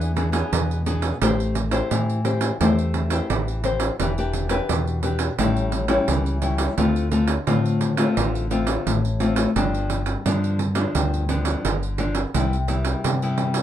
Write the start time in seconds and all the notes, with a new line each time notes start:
Already playing: E2 E3 B3 D4 G#4
0.01 pandeiro
0.16 B3 D4 G#4, pandeiro
0.32 B3 D4 G#4, pandeiro
0.52 E2 B2, pandeiro
0.71 pandeiro
0.86 B3 D4 G#4, pandeiro
1.02 pandeiro
1.22 A1 A3 E4 G4 C5, pandeiro
1.40 pandeiro
1.55 pandeiro
1.71 E4 G4 C5, pandeiro
1.91 A2 E3, pandeiro
2.09 pandeiro
2.25 E4 G4 C5, pandeiro
2.41 pandeiro
2.60 E2 A3 E4 G4 C5, pandeiro
2.79 pandeiro
2.94 pandeiro
3.10 E4 G4 C5, pandeiro
3.30 A1 E3, pandeiro
3.48 pandeiro
3.64 E4 G4 C5, pandeiro
3.80 pandeiro
4.00 E1 E3 D4 G4 B4, pandeiro
4.18 D4 G4 B4, pandeiro
4.33 pandeiro
4.49 D4 G4 B4, pandeiro
4.69 E2 B2, pandeiro
4.87 pandeiro
5.03 D4 G4 B4, pandeiro
5.19 pandeiro
5.39 A1 A2 G3 C#4 E4, pandeiro
5.56 pandeiro
5.72 pandeiro
5.88 G3 C#4 E4, pandeiro
6.08 C#2 E3, pandeiro
6.26 pandeiro
6.42 G3 C#4 E4, pandeiro
6.58 pandeiro
6.77 D2 D3 A3 C4 F4, pandeiro
6.96 pandeiro
7.11 A3 C4 F4, pandeiro
7.28 pandeiro
7.47 A2 D3 A3 C4 F4, pandeiro
7.66 pandeiro
7.81 pandeiro
7.97 A3 C4 F4, pandeiro
8.17 A1 D3, pandeiro
8.35 pandeiro
8.50 A3 C4 F4, pandeiro
8.67 pandeiro
8.86 A1 A2, pandeiro
9.05 pandeiro
9.20 A3 C4 F4, pandeiro
9.36 pandeiro
9.56 G1 G2 F3 B3 D4, pandeiro
9.74 pandeiro
9.90 pandeiro
10.06 pandeiro
10.25 G2 D3 F3 B3 D4, pandeiro
10.44 pandeiro
10.59 pandeiro
10.75 F3 B3 D4, pandeiro
10.95 D2 G2, pandeiro
11.14 pandeiro
11.29 F3 B3 D4, pandeiro
11.45 pandeiro
11.65 G1 D3, pandeiro
11.83 pandeiro
11.98 F3 B3 D4, pandeiro
12.15 pandeiro
12.34 C2 C3 G3 B3 E4, pandeiro
12.53 pandeiro
12.68 G3 B3 E4, pandeiro
12.85 pandeiro
13.04 G2 C3, pandeiro
13.22 G3 B3 E4, pandeiro
13.38 pandeiro
13.54 pandeiro